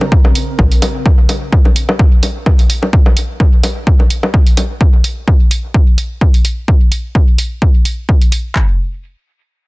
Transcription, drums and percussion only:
0.01 low bongo
0.12 kick
0.25 low bongo
0.35 open hi-hat
0.59 kick, low bongo
0.72 open hi-hat
0.82 open hi-hat, low bongo
1.06 kick, low bongo
1.29 open hi-hat, low bongo
1.53 kick
1.65 low bongo
1.76 open hi-hat
1.89 low bongo
1.99 kick
2.23 open hi-hat, low bongo
2.46 kick, low bongo
2.59 open hi-hat
2.70 open hi-hat
2.83 low bongo
2.93 kick
3.06 low bongo
3.17 open hi-hat
3.40 kick, low bongo
3.63 open hi-hat, low bongo
3.87 kick
4.00 low bongo
4.10 open hi-hat
4.23 low bongo
4.34 kick
4.47 open hi-hat
4.57 open hi-hat, low bongo
4.81 kick
5.04 open hi-hat
5.28 kick
5.51 open hi-hat
5.74 kick
5.98 open hi-hat
6.21 kick
6.34 open hi-hat
6.45 open hi-hat
6.68 kick
6.92 open hi-hat
7.15 kick
7.38 open hi-hat
7.62 kick
7.85 open hi-hat
8.09 kick
8.22 open hi-hat
8.32 open hi-hat
8.56 kick, clap

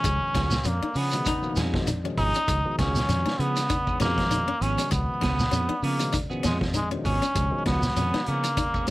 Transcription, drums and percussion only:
0.04 kick, closed hi-hat, shekere
0.34 kick, snare, closed hi-hat, shekere
0.51 snare, shekere
0.64 closed hi-hat, shekere
0.94 open hi-hat, shekere
1.11 closed hi-hat, shekere
1.25 kick, closed hi-hat, shekere
1.43 shekere
1.56 snare, closed hi-hat, shekere
1.74 kick, snare
1.87 closed hi-hat, shekere
2.17 kick, open hi-hat, shekere
2.34 closed hi-hat, shekere
2.48 kick, closed hi-hat, shekere
2.79 kick, snare, closed hi-hat, shekere
2.95 snare, closed hi-hat, shekere
3.09 snare, closed hi-hat, shekere
3.27 snare
3.40 closed hi-hat, shekere
3.56 snare, closed hi-hat, shekere
3.69 kick, closed hi-hat, shekere
3.87 kick, shekere
4.01 snare, closed hi-hat, shekere
4.18 kick, snare, closed hi-hat
4.31 closed hi-hat, shekere
4.62 closed hi-hat, shekere
4.79 closed hi-hat, shekere
4.92 kick, closed hi-hat, shekere
5.22 kick, snare, closed hi-hat, shekere
5.39 snare, shekere
5.53 closed hi-hat, shekere
5.83 open hi-hat, shekere
6.00 closed hi-hat, shekere
6.13 kick, closed hi-hat, shekere
6.31 shekere
6.44 snare, closed hi-hat, shekere
6.61 kick, snare
6.74 closed hi-hat, shekere
7.05 kick, open hi-hat, shekere
7.23 closed hi-hat, shekere
7.35 kick, closed hi-hat, shekere
7.66 kick, snare, closed hi-hat, shekere
7.83 snare, closed hi-hat, shekere
7.96 snare, closed hi-hat, shekere
8.14 snare
8.26 closed hi-hat, shekere
8.43 closed hi-hat, shekere
8.57 kick, closed hi-hat, shekere
8.74 kick, shekere
8.87 closed hi-hat

